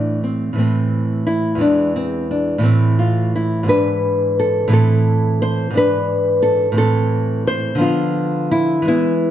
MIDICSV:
0, 0, Header, 1, 2, 480
1, 0, Start_track
1, 0, Tempo, 693642
1, 1113, Time_signature, 6, 3, 24, 8
1, 3044, Tempo, 684151
1, 5444, Tempo, 714286
1, 6444, End_track
2, 0, Start_track
2, 0, Title_t, "Nylon-string guitar"
2, 0, Program_c, 0, 24
2, 0, Note_on_c, 0, 45, 57
2, 0, Note_on_c, 0, 52, 45
2, 0, Note_on_c, 0, 57, 43
2, 0, Note_on_c, 0, 62, 88
2, 146, Note_off_c, 0, 62, 0
2, 164, Note_on_c, 0, 60, 51
2, 358, Note_off_c, 0, 45, 0
2, 366, Note_on_c, 0, 45, 53
2, 369, Note_off_c, 0, 52, 0
2, 375, Note_off_c, 0, 57, 0
2, 384, Note_on_c, 0, 52, 53
2, 392, Note_off_c, 0, 60, 0
2, 397, Note_on_c, 0, 57, 45
2, 405, Note_on_c, 0, 60, 74
2, 859, Note_off_c, 0, 60, 0
2, 876, Note_on_c, 0, 64, 86
2, 1073, Note_off_c, 0, 45, 0
2, 1073, Note_on_c, 0, 40, 63
2, 1082, Note_off_c, 0, 52, 0
2, 1089, Note_off_c, 0, 57, 0
2, 1092, Note_on_c, 0, 52, 53
2, 1103, Note_off_c, 0, 64, 0
2, 1105, Note_on_c, 0, 56, 47
2, 1112, Note_on_c, 0, 62, 81
2, 1341, Note_off_c, 0, 62, 0
2, 1355, Note_on_c, 0, 60, 77
2, 1582, Note_off_c, 0, 60, 0
2, 1597, Note_on_c, 0, 62, 69
2, 1786, Note_off_c, 0, 40, 0
2, 1787, Note_on_c, 0, 45, 69
2, 1789, Note_off_c, 0, 52, 0
2, 1797, Note_on_c, 0, 52, 53
2, 1803, Note_off_c, 0, 56, 0
2, 1817, Note_on_c, 0, 57, 48
2, 1822, Note_off_c, 0, 62, 0
2, 1825, Note_on_c, 0, 60, 85
2, 2059, Note_off_c, 0, 60, 0
2, 2068, Note_on_c, 0, 65, 82
2, 2307, Note_off_c, 0, 65, 0
2, 2321, Note_on_c, 0, 64, 82
2, 2513, Note_on_c, 0, 44, 67
2, 2522, Note_off_c, 0, 45, 0
2, 2525, Note_off_c, 0, 52, 0
2, 2534, Note_on_c, 0, 52, 53
2, 2537, Note_off_c, 0, 57, 0
2, 2547, Note_on_c, 0, 62, 50
2, 2551, Note_off_c, 0, 64, 0
2, 2553, Note_on_c, 0, 71, 99
2, 3017, Note_off_c, 0, 71, 0
2, 3041, Note_on_c, 0, 69, 81
2, 3232, Note_off_c, 0, 44, 0
2, 3239, Note_on_c, 0, 45, 73
2, 3244, Note_off_c, 0, 52, 0
2, 3251, Note_off_c, 0, 62, 0
2, 3253, Note_on_c, 0, 52, 64
2, 3269, Note_on_c, 0, 60, 59
2, 3271, Note_off_c, 0, 69, 0
2, 3278, Note_on_c, 0, 69, 95
2, 3740, Note_off_c, 0, 69, 0
2, 3760, Note_on_c, 0, 72, 110
2, 3957, Note_off_c, 0, 45, 0
2, 3960, Note_on_c, 0, 44, 73
2, 3965, Note_off_c, 0, 52, 0
2, 3973, Note_off_c, 0, 60, 0
2, 3981, Note_on_c, 0, 52, 57
2, 3991, Note_off_c, 0, 72, 0
2, 3993, Note_on_c, 0, 62, 62
2, 4009, Note_on_c, 0, 71, 111
2, 4463, Note_off_c, 0, 71, 0
2, 4465, Note_on_c, 0, 69, 106
2, 4669, Note_off_c, 0, 52, 0
2, 4672, Note_on_c, 0, 45, 73
2, 4676, Note_off_c, 0, 44, 0
2, 4685, Note_on_c, 0, 52, 61
2, 4693, Note_off_c, 0, 62, 0
2, 4701, Note_on_c, 0, 60, 64
2, 4702, Note_off_c, 0, 69, 0
2, 4714, Note_on_c, 0, 69, 111
2, 5178, Note_off_c, 0, 69, 0
2, 5202, Note_on_c, 0, 72, 120
2, 5392, Note_off_c, 0, 52, 0
2, 5395, Note_on_c, 0, 50, 75
2, 5396, Note_off_c, 0, 45, 0
2, 5411, Note_off_c, 0, 60, 0
2, 5412, Note_on_c, 0, 53, 66
2, 5426, Note_on_c, 0, 59, 61
2, 5433, Note_off_c, 0, 72, 0
2, 5439, Note_on_c, 0, 65, 95
2, 5893, Note_off_c, 0, 65, 0
2, 5911, Note_on_c, 0, 64, 90
2, 6109, Note_off_c, 0, 50, 0
2, 6114, Note_off_c, 0, 53, 0
2, 6116, Note_on_c, 0, 52, 67
2, 6125, Note_off_c, 0, 59, 0
2, 6137, Note_on_c, 0, 56, 57
2, 6143, Note_off_c, 0, 64, 0
2, 6151, Note_on_c, 0, 59, 54
2, 6156, Note_on_c, 0, 64, 101
2, 6444, Note_off_c, 0, 52, 0
2, 6444, Note_off_c, 0, 56, 0
2, 6444, Note_off_c, 0, 59, 0
2, 6444, Note_off_c, 0, 64, 0
2, 6444, End_track
0, 0, End_of_file